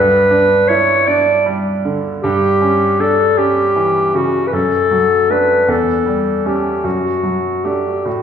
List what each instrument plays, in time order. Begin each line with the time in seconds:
Already playing: grand piano G2, clarinet B4
0.31 grand piano D4
0.68 grand piano E4, clarinet C#5
1.07 grand piano D4, clarinet D5
1.46 grand piano G3
1.85 grand piano D3
2.23 grand piano G2, clarinet G4
2.61 grand piano C#4
3.00 grand piano D4, clarinet A4
3.38 grand piano C#4, clarinet G4
3.76 grand piano E3
4.14 grand piano C#3, clarinet F#4
4.47 clarinet B4
4.53 grand piano F#2, clarinet A4
4.91 grand piano F#3
5.30 grand piano A3 D4, clarinet B4
5.68 grand piano E2, clarinet A4
6.06 grand piano G3
6.46 grand piano A3 C#4, clarinet G4
6.84 grand piano F#2, clarinet F#4
7.23 grand piano F#3
7.64 grand piano A3 D4, clarinet G4
8.06 grand piano A2, clarinet F#4